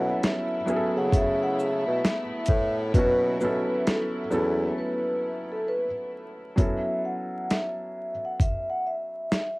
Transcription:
Already playing: B2 F#3 A3 B3 C#4 E4 A4 F#5
0.23 E5, snare, closed hi-hat
0.66 F#3 B3 C#4 E4, shaker
0.70 G#4
0.76 A4
0.97 C#3 F#5
1.12 E5, kick, closed hi-hat
1.43 F#5
1.59 E5, shaker
1.87 B2
2.05 snare, closed hi-hat
2.46 A2, kick, closed hi-hat, shaker
2.94 B2 F#3 B3 C#4 E4 B4, kick, closed hi-hat
2.99 F#4
3.40 B2 F#3 B3 C#4 E4, shaker
3.44 A4
3.87 A4, snare, closed hi-hat
4.30 E2 F#3 B3 C#4 E4 A4, shaker
4.78 B4
5.52 A4
5.68 B4
6.56 F#3 B3 C#4 E4 E5, kick, closed hi-hat
6.60 A4
7.05 F#5
7.50 E5, snare, closed hi-hat
8.25 F#5
8.40 E5, kick, closed hi-hat
8.70 F#5
8.87 E5
9.32 snare, closed hi-hat

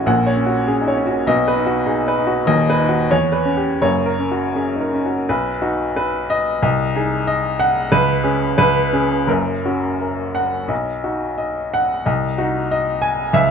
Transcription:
Already playing: A1 A2 C#4 D#4 F#4 G#4 C#5 F#5
0.06 A#1 A#2 F#5
0.27 C#5
0.36 C#4
0.46 F#4
0.67 C#4 G#4
0.81 D#4
0.88 C#5
0.97 C#4
1.07 F#4
1.27 B1 B2 D#5
1.48 B4
1.56 D#4
1.66 F#4
1.86 D#4 G#4
2.08 B4
2.19 D#4
2.27 F#4
2.46 D#1 D#2 D#5
2.70 B4
2.80 D#4
2.89 F#4
3.11 E2 C#5
3.32 B4
3.45 C#4
3.57 G4
3.81 F#1 F#2 C#5
4.06 A#4
4.19 C#4
4.31 F#4
4.55 C#4 G#4
4.75 D#4
4.80 A#4
4.93 C#4
5.06 F#4
5.29 B1 B4
5.62 D#4 F#4
5.96 B4
6.30 D#5
6.62 C2 D#5
6.96 D#4 G#4
7.27 D#5
7.60 F#5
7.92 C#2 B4
8.23 C#4 G#4
8.58 C#2 B4
8.93 C#4 G#4
9.27 F#1 F#2 A#4
9.65 C#4 F#4
10.01 A#4
10.35 F#5
10.68 B1 D#5
11.04 D#4 F#4
11.38 D#5
11.74 F#5
12.06 C2 D#5
12.38 D#4 F#4
12.71 D#5
13.02 G#5
13.33 C#2 E5

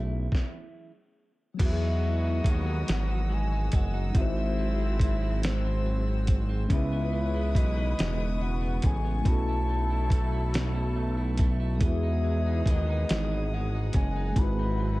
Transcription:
Already playing: B1 B2 E3 F#3 A3 C#4 E4 G#4 E5
0.32 kick, snare
1.54 F#3 B3
1.59 E2 E3 F#3 B3 F#4 G#4 F#5 D#6 E6, kick, closed hi-hat, crash
1.65 F#4 E5
1.72 G#4
1.82 D#4
2.03 G#3
2.24 D#4
2.44 D#2 G#3, kick, closed hi-hat
2.49 F#5
2.66 D#4
2.87 G#1 E3, snare, closed hi-hat
3.09 D#4
3.30 G#3 G#5
3.52 D#4
3.72 F#1 G#3 F#5, kick, closed hi-hat
3.94 D#4
4.10 G#3 C4
4.15 G#1 G#2 C3 C4 E4 F#4 E5 C6, kick, closed hi-hat
4.21 C5
4.37 C4
4.58 F#3
4.80 C4
5.00 F#3 E5, kick, closed hi-hat
5.22 C4
5.43 G#2 C5, snare, closed hi-hat
5.65 C4
5.86 F#3
6.08 C4
6.27 F#3, kick, closed hi-hat
6.49 C4
6.66 G#3 C#4
6.70 C#2 C#3 G#3 B3 E4 B4 E5 C#6 D#6, kick, closed hi-hat
6.77 B4
6.92 B3
7.12 E3
7.34 B3
7.55 B1 E3 D#5, kick, closed hi-hat
7.77 B3
7.98 E1 C#3, snare, closed hi-hat
8.19 B3
8.41 E3 F#5
8.62 B3
8.82 A1 E3 G#5, kick, closed hi-hat
9.04 B3
9.21 F#3 A3 C#4 E4 A4
9.25 B1 B2 E4 F#4 A4 A5, kick, closed hi-hat
9.32 A4
9.48 E4
9.69 A3
9.90 E4
10.10 A3, kick, closed hi-hat
10.32 E4
10.53 B2, snare, closed hi-hat
10.75 E4
10.96 A3
11.17 E4
11.37 A3, kick, closed hi-hat
11.60 E4
11.77 E3 G#3 B3 G#4, kick, closed hi-hat
11.81 E2 F#3 F#4 G#4 E5 F#5 D#6
11.87 B4
12.03 D#4
12.24 G#3
12.46 D#4
12.66 D#2 G#3 D#5, kick, closed hi-hat
12.89 D#4
13.09 G#1 E3, snare, closed hi-hat
13.31 D#4
13.53 G#3 F#5
13.75 D#4
13.93 F#1 G#3 G#5, kick, closed hi-hat
14.16 D#4
14.31 G#3 C4
14.36 G#1 G#2 C3 E4 F#4 B4 G#5 B5, kick, closed hi-hat
14.43 B4
14.59 C4
14.80 F#3

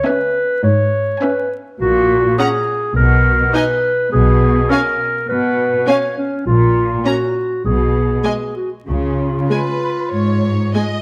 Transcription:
0.06 C#4 B4 E5 G#5
0.64 G#2 C#5
1.21 C#4 B4 E5 G#5
1.80 A#1 A#2 F#4
2.38 C#4 G#4 F#5 A#5
2.96 B1 B2 A#4
3.54 D#4 B4 D#5 G#5
4.12 B1 B2 G#4
4.70 C#4 A#4 F5 G#5
5.29 B2 B4
5.88 C#4 C#5 F5 G#5
6.17 C#4
6.47 A#1 A#2 F4
7.06 C#4 F#4 C#5 A#5
7.65 B1 B2 G#4
8.24 G#3 D#5 G#5
8.56 F#4
8.87 C#2 C#3 F4
9.50 G#3 B4 G#5
10.13 G#2 C#5
10.75 G#3 D#5 G#5

